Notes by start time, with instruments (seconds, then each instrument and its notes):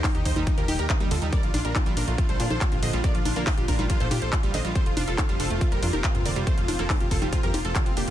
Already playing: analog synth pad A#2 D#3 G3 D#4 G4
0.04 synth pluck D#4, supersaw synth D#4, kick, clap, open hi-hat, high conga
0.15 analog synth bass D#2, synth pluck D#4, supersaw synth D#4, synth arpeggio sound G4, closed hi-hat
0.25 analog synth bass D#2, supersaw synth D#4 C5, synth pluck C5, kick, open hi-hat
0.36 analog synth bass D#2, synth arpeggio sound G3, synth pluck D#4, supersaw synth D#4, closed hi-hat, high conga
0.47 synth arpeggio sound F3, synth pluck D#4, supersaw synth D#4, kick, closed hi-hat
0.58 analog synth bass D#2, synth arpeggio sound F3, supersaw synth G4 A#4, synth pluck A#4, closed hi-hat
0.68 analog synth bass D#1, synth pluck D#4, supersaw synth D#4, synth arpeggio sound G4, open hi-hat, high conga
0.79 analog synth bass D#2, supersaw synth G4 A#4, synth pluck A#4, closed hi-hat
0.90 synth arpeggio sound C4, synth pluck D#4, supersaw synth D#4, kick, clap, closed hi-hat
1.00 analog synth bass D#2, synth arpeggio sound G3, synth pluck D#4, supersaw synth D#4, closed hi-hat
1.11 analog synth bass D#2, synth arpeggio sound D3, supersaw synth F4 A4, synth pluck A4, open hi-hat
1.22 analog synth bass D#2, synth arpeggio sound G3, synth pluck D#4, supersaw synth D#4, closed hi-hat
1.33 analog synth pad D3 F3 D4 F4, synth arpeggio sound G3, supersaw synth A#4 D5, synth pluck D5, kick, closed hi-hat
1.43 analog synth bass A#1, synth pluck F4, supersaw synth F4, closed hi-hat
1.54 analog synth bass A#1, synth arpeggio sound D4, synth pluck F4, supersaw synth F4, open hi-hat, high conga
1.65 analog synth bass A#1, synth arpeggio sound G3, supersaw synth D4 A#4, synth pluck A#4, closed hi-hat
1.75 synth arpeggio sound C4, synth pluck F4, supersaw synth F4, kick, clap, closed hi-hat, high conga
1.86 analog synth bass A#1, synth arpeggio sound G3, synth pluck F4, supersaw synth F4, closed hi-hat
1.97 analog synth bass A#1, synth arpeggio sound D4, supersaw synth D4 A#4, synth pluck A#4, open hi-hat
2.08 analog synth bass A#1, synth arpeggio sound A3, supersaw synth F4, synth pluck F4, closed hi-hat
2.18 synth arpeggio sound A3, synth pluck F4, supersaw synth F4, kick, closed hi-hat
2.29 analog synth bass A#1, synth arpeggio sound G3, supersaw synth A4 C5, synth pluck C5, closed hi-hat
2.40 analog synth bass A#2, synth arpeggio sound D4, supersaw synth F4, synth pluck F4, open hi-hat
2.50 analog synth bass A#1, supersaw synth A4 C5, synth pluck C5, closed hi-hat, high conga
2.61 synth arpeggio sound C4, supersaw synth F4, synth pluck F4, kick, clap, closed hi-hat
2.72 analog synth bass A#1, synth arpeggio sound G2, supersaw synth F4, synth pluck F4, closed hi-hat
2.83 analog synth bass A#1, synth arpeggio sound D3, supersaw synth C5 D#5, synth pluck D#5, open hi-hat
2.93 analog synth bass A#1, synth arpeggio sound G3, synth pluck F4, supersaw synth F4, closed hi-hat
3.04 synth arpeggio sound A3, supersaw synth A#4 D5, synth pluck D5, kick, closed hi-hat
3.15 analog synth bass A#1, synth arpeggio sound F3, supersaw synth F4, synth pluck F4, closed hi-hat
3.25 analog synth bass A#1, synth arpeggio sound D4, synth pluck F4, supersaw synth F4, open hi-hat, high conga
3.36 analog synth bass A#1, synth arpeggio sound A#3, supersaw synth D4 A#4, synth pluck A#4, closed hi-hat
3.47 synth arpeggio sound C4, kick, clap, open hi-hat, high conga
3.58 analog synth bass A#1, synth pluck F4, supersaw synth F4, synth arpeggio sound G4, closed hi-hat
3.68 analog synth bass A#1, supersaw synth D4 A#4, synth pluck A#4, kick, open hi-hat
3.79 analog synth bass A#1, synth arpeggio sound G3, synth pluck F4, supersaw synth F4, closed hi-hat, high conga
3.90 synth arpeggio sound F3, synth pluck F4, supersaw synth F4, kick, closed hi-hat
4.00 analog synth bass A#1, synth arpeggio sound F3, supersaw synth A4 C5, synth pluck C5, closed hi-hat
4.11 analog synth bass A#2, synth pluck F4, supersaw synth F4, synth arpeggio sound G4, open hi-hat, high conga
4.22 analog synth bass A#1, supersaw synth A4 C5, synth pluck C5, closed hi-hat
4.33 synth arpeggio sound C4, synth pluck F4, supersaw synth F4, kick, clap, closed hi-hat
4.43 analog synth bass A#1, synth arpeggio sound G3, synth pluck F4, supersaw synth F4, closed hi-hat
4.54 analog synth bass A#1, synth arpeggio sound D3, supersaw synth C5 D#5, synth pluck D#5, open hi-hat
4.65 analog synth bass A#1, synth arpeggio sound G3, supersaw synth F4, synth pluck F4, closed hi-hat
4.75 analog synth pad A#2 C3 C4, synth arpeggio sound G3, supersaw synth A4 C5, synth pluck C5, kick, closed hi-hat
4.86 analog synth bass F1, supersaw synth F4, synth pluck F4, closed hi-hat
4.97 analog synth bass F1, synth arpeggio sound D4, supersaw synth F4, synth pluck F4, open hi-hat, high conga
5.08 analog synth bass F1, synth arpeggio sound G3, supersaw synth F4 A4, synth pluck A4, closed hi-hat
5.18 synth arpeggio sound C4, synth pluck F4, kick, clap, closed hi-hat, high conga
5.29 analog synth bass F1, synth arpeggio sound G3, supersaw synth F4, synth pluck F4, closed hi-hat
5.40 analog synth bass F1, synth arpeggio sound D4, supersaw synth F4 A4, synth pluck A4, open hi-hat
5.50 analog synth bass F1, synth arpeggio sound A3, supersaw synth F4, synth pluck F4, closed hi-hat
5.61 synth arpeggio sound A3, synth pluck F4, supersaw synth F4, kick, closed hi-hat
5.72 analog synth bass F1, synth arpeggio sound G3, supersaw synth G4 A#4, synth pluck A#4, closed hi-hat
5.83 analog synth bass F2, synth arpeggio sound D4, synth pluck F4, supersaw synth F4, open hi-hat
5.93 analog synth bass F1, supersaw synth G4 A#4, synth pluck A#4, closed hi-hat, high conga
6.04 synth arpeggio sound C4, synth pluck F4, supersaw synth F4, kick, clap, closed hi-hat
6.15 analog synth bass F1, synth arpeggio sound G2, synth pluck F4, supersaw synth F4, closed hi-hat
6.25 analog synth bass F1, synth arpeggio sound D3, supersaw synth A#4 D5, synth pluck D5, open hi-hat
6.36 analog synth bass F1, synth arpeggio sound G3, synth pluck F4, supersaw synth F4, closed hi-hat
6.47 synth arpeggio sound A3, supersaw synth A4 C5, synth pluck C5, kick, closed hi-hat
6.58 analog synth bass F1, synth arpeggio sound F3, supersaw synth F4, synth pluck F4, closed hi-hat
6.68 analog synth bass F1, synth arpeggio sound D4, supersaw synth F4, synth pluck F4, open hi-hat, high conga
6.79 analog synth bass F1, synth arpeggio sound A#3, supersaw synth F4 A4, synth pluck A4, closed hi-hat
6.90 synth arpeggio sound C4, supersaw synth F4, kick, clap, open hi-hat, high conga
7.00 analog synth bass F1, supersaw synth F4, synth pluck F4, synth arpeggio sound G4, closed hi-hat
7.11 analog synth bass F1, supersaw synth F4 A4, synth pluck A4, kick, open hi-hat
7.22 analog synth bass F1, synth arpeggio sound G3, supersaw synth F4, synth pluck F4, closed hi-hat, high conga
7.33 synth arpeggio sound F3, supersaw synth F4, synth pluck F4, kick, closed hi-hat
7.43 analog synth bass F2, synth arpeggio sound F3, supersaw synth G4 A#4, synth pluck A#4, closed hi-hat
7.54 analog synth bass F1, supersaw synth F4, synth pluck F4, synth arpeggio sound G4, open hi-hat, high conga
7.65 analog synth bass F1, supersaw synth F4 A4, synth pluck A4, closed hi-hat
7.75 synth arpeggio sound D3, supersaw synth F4, synth pluck F4, kick, clap, closed hi-hat
7.86 analog synth bass F1, synth arpeggio sound C4, supersaw synth F4, synth pluck F4, closed hi-hat
7.97 analog synth bass F1, supersaw synth A#3 G4, synth arpeggio sound D4, synth pluck G4, open hi-hat